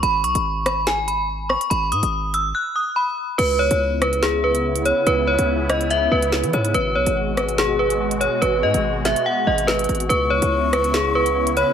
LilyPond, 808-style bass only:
\new Staff \with { instrumentName = "808-style bass" } { \clef bass \time 4/4 \key cis \minor \tempo 4 = 143 gis,,8 b,,16 gis,,2. r16 | gis,,8 gis,16 gis,,4~ gis,,16 r2 | cis,8. cis,2. r16 | cis,8. cis,4.~ cis,16 cis,8. e16 gis,8 |
gis,,8 b,,16 gis,,2. r16 | gis,,8 gis,16 gis,,4 r8. gis,,4 gis,,8 | cis,8. cis,2. r16 | }